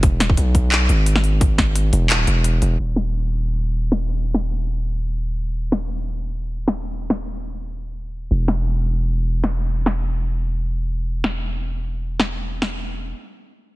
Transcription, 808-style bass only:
X:1
M:4/4
L:1/8
Q:"Swing 16ths" 1/4=174
K:Fblyd
V:1 name="808-style bass" clef=bass
=E,,,2 =B,,,3 ^G,,,3- | ^G,,,3 =E,,,2 E,,,2 E,,, | z8 | z8 |
z8 | z8 | F,,,8- | F,,,8- |
F,,,8- | F,,,4 z4 |]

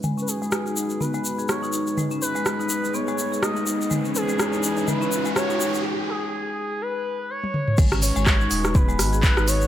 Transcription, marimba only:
X:1
M:4/4
L:1/16
Q:"Swing 16ths" 1/4=124
K:G#m
V:1 name="Marimba"
G, C z G, z D D z B, G, z G z D D z | G, C z G, z D D z B, G, z G z D D z | G, C z G, z D D z G, C z G, z D D z | z16 |
G, C z G, z D D z B, G, z G z D D z |]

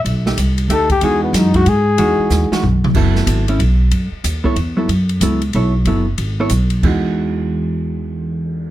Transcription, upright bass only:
X:1
M:3/4
L:1/8
Q:"Swing" 1/4=186
K:E
V:1 name="Upright bass" clef=bass
B,,,2 =C,,2 =D,,2 | E,,2 F,,2 G,,2 | E,, z D,, z B,,,2 | F,,,2 G,,,2 B,,,2 |
F,, z D,,2 E,,2 | F,,2 C,,2 B,,,2 | F,,,2 G,,,2 B,,,2 | E,,6- |
E,,6 |]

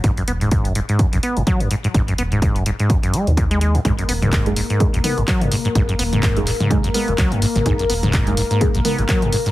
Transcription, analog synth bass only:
X:1
M:4/4
L:1/16
Q:"Swing 16ths" 1/4=126
K:G#m
V:1 name="Analog synth bass" clef=bass
G,,, z D,,,4 z3 B,,, z G,,, z4 | G,,, z D,,,4 z4 z D,,4 z | G,,, z D,,,4 z3 B,,, z G,,, z4 | G,,, z D,,,4 z4 z D,,, C,, G,,, z G,,, |
G,,, z D,,,4 z3 B,,, z G,,, z4 |]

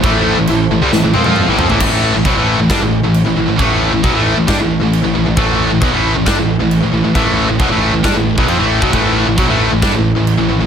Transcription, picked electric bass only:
X:1
M:4/4
L:1/16
Q:1/4=135
K:Am
V:1 name="Picked electric bass" clef=bass
A,,,3 A,,, A,,,2 A,,, C,, A,,, A,,, F,, F,,2 A,,, F,, A,,, | A,,,3 A,,, B,,, A,,,2 A,,, G,, A,,,2 A,,,2 A,,, A,,, A,,, | A,,,3 A,,, B,,, A,,,2 A,,, G,, A,,,2 A,,,2 A,,, A,,, A,,, | A,,,3 A,,, B,,, A,,,2 A,,, G,, A,,,2 A,,,2 A,,, A,,, A,,, |
A,,,3 A,,, B,,, A,,,2 A,,, G,, A,,,2 B,,, F,, A,,,2 B,,, | A,,,3 A,,, B,,, A,,,2 A,,, G,, A,,,2 A,,,2 A,,, A,,, A,,, |]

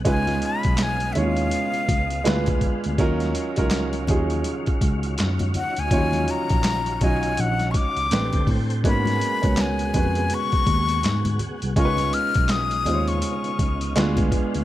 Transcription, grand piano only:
X:1
M:4/4
L:1/16
Q:"Swing 16ths" 1/4=82
K:D#m
V:1 name="Grand piano"
[G,CDEB]4- [G,CDEB] z [G,CD=E^Ec]6 [_A,B,=D=E=FB]3 z | [F,CDEA]2 z [F,CDEA]2 z [E,F,CDEG]6 z4 | [E,F,CDEc]4- [E,F,CDEc] z [F,CDEd]6 [=A,=C=D=GB]3 z | [G,A,B,CF]2 z [G,B,CFc]2 z [G,B,CFB]6 z4 |
[G,CDEAB]4- [G,CDEAB] z [G,CDE^Bc]6 [_A,=B,=D=F=B]3 z |]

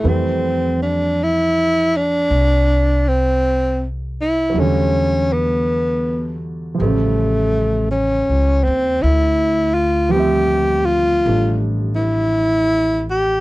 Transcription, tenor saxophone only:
X:1
M:4/4
L:1/16
Q:"Swing" 1/4=54
K:F
V:1 name="Tenor saxophone"
C2 D2 E2 D4 C3 z E2 | _D2 =B,4 z2 A,4 ^C2 ^B,2 | E2 F2 G2 F3 z E4 G2 |]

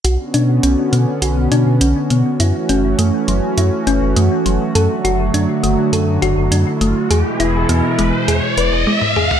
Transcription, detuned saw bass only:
X:1
M:4/4
L:1/16
Q:1/4=102
K:Bdor
V:1 name="Detuned saw bass" clef=bass
B,,, z B,,2 B,,, z B,, z B,,,2 B,, B,, B,,, z B,, z | F,, z F,,,2 F,, z F,,, z F,, z F,,, F,,, F,, z F,,, z | F,, z F,,,2 F,, z F,,, z F,,2 F,,, F,,, F,, z F,,, z | E,, z E,,,2 E,, z E,,, z E,, z E,,, E,,, z4 |]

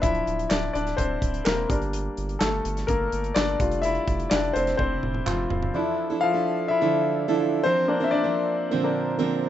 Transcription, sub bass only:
X:1
M:4/4
L:1/8
Q:1/4=126
K:Dm
V:1 name="Sub bass" clef=bass
D,,, D,,, D,,, D,,, D,,, D,,, E,,, G,,,- | G,,, G,,, G,,, G,,, G,,, G,,, G,,, F,,,- | F,,, F,,, F,,, F,,, F,,, F,,, F,,, _D,,, | z8 |
z8 |]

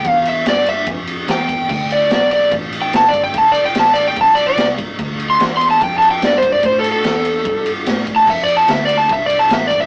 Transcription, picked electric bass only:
X:1
M:4/4
L:1/8
Q:1/4=146
K:Ddor
V:1 name="Picked electric bass" clef=bass
E,,2 G,,2 F,,2 E,,2 | D,,2 B,,,2 A,,,2 G,,,2 | F,,,2 A,,,2 B,,,2 C,, z | D,,2 E,,2 F,,2 G,,2 |
A,,2 E,,2 G,,2 A,,2 | F,,2 D,,2 C,,2 A,,,2 |]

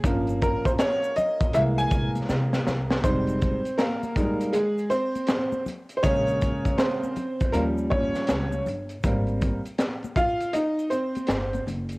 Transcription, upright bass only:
X:1
M:4/4
L:1/16
Q:"Swing 16ths" 1/4=80
K:Fm
V:1 name="Upright bass" clef=bass
G,,,3 z4 z C,,2 C,,2 C,2 C,,2 | F,,,3 z12 z | B,,,3 z4 z E,,4 D,,2 G,,,2 | A,,,3 z8 z G,,,2 _G,,,2 |]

